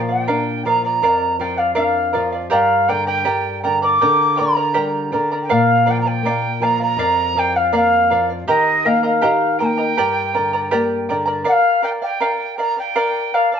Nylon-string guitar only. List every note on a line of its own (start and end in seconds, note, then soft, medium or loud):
0.00 0.99 A#2 medium
0.00 0.28 F3 medium
0.29 0.65 D4 soft
0.65 1.02 F3 soft
1.02 2.48 F2 medium
1.39 1.76 F3 soft
1.76 2.13 D4 medium
2.15 2.51 F3 soft
2.52 3.97 G2 medium
2.90 3.26 D3 medium
3.26 3.62 G3 medium
3.65 4.01 D3 soft
4.03 5.13 D3 medium
4.41 4.76 D5 medium
4.76 5.12 G3 medium
5.14 5.50 D3 soft
5.51 6.96 A#2 medium
5.88 6.24 F3 medium
6.23 6.60 A#3 medium
6.60 6.97 F3 soft
6.97 8.43 F2 medium
7.33 7.71 F3 medium
7.72 8.09 A#3 medium
8.11 8.47 F3 medium
8.49 9.93 D#3 medium
8.86 9.22 A#3 medium
9.24 9.59 G4 medium
9.61 9.97 A#3 soft
9.98 11.43 G2 medium
10.37 10.72 D3 medium
10.73 11.09 A#3 medium
11.10 11.46 D3 soft